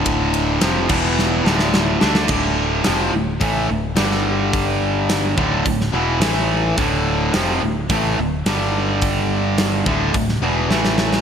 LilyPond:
<<
  \new Staff \with { instrumentName = "Distorted electric guitar" } { \clef bass \time 4/4 \key d \minor \tempo 4 = 107 <d, a, d>4 <f, c f>8 <e, b, e>4 <d, a, d>4 <d a d'>8 | <d, a, d>4 <f, c f>8 <d, a,>8 <a, e a>8 <d, a,>8 <g, d g>4~ | <g, d g>4. <d, a, d>8 <d, a,>8 <e, b, e>8 <a, e a>4 | <d, a, d>4 <f, c f>8 <d, a,>8 <a, e a>8 <d, a,>8 <g, d g>4~ |
<g, d g>4. <d, a, d>8 <d, a,>8 <e, b, e>8 <a, e a>4 | }
  \new Staff \with { instrumentName = "Distorted electric guitar" } { \clef bass \time 4/4 \key d \minor <d, a, d>4 <f, c f>8 <e, b, e>4 <d, a, d>4 <d a d'>8 | <d, a, d>4 <f, c f>8 <d, a,>8 <a, e a>8 <d, a,>8 <g, d g>4~ | <g, d g>4. <d, a, d>8 <d, a,>8 <e, b, e>8 <a, e a>4 | <d, a, d>4 <f, c f>8 <d, a,>8 <a, e a>8 <d, a,>8 <g, d g>4~ |
<g, d g>4. <d, a, d>8 <d, a,>8 <e, b, e>8 <a, e a>4 | }
  \new Staff \with { instrumentName = "Picked electric bass" } { \clef bass \time 4/4 \key d \minor d,,4 f,,8 e,,4 d,,4 d,8 | d,,4 f,,8 d,,8 a,,8 d,,8 g,,4~ | g,,4. d,,8 d,,8 e,,8 a,,4 | d,,4 f,,8 d,,8 a,,8 d,,8 g,,4~ |
g,,4. d,,8 d,,8 e,,8 a,,4 | }
  \new DrumStaff \with { instrumentName = "Drums" } \drummode { \time 4/4 <bd cymr>8 cymr8 <cymr sn>8 <cymc bd>8 sn8 sn16 sn16 sn8 sn16 sn16 | <cymc bd>4 <hho sn>4 <hho bd>4 <hho sn>16 sn8. | <hho bd>4 <hho sn>8 bd8 <hho bd>16 sn8. <hho sn>4 | <hho bd>4 <hho sn>4 <hho bd>4 <hho sn>4 |
<hho bd>4 <hho sn>8 bd8 <hho bd>16 sn8. sn16 sn16 sn16 sn16 | }
>>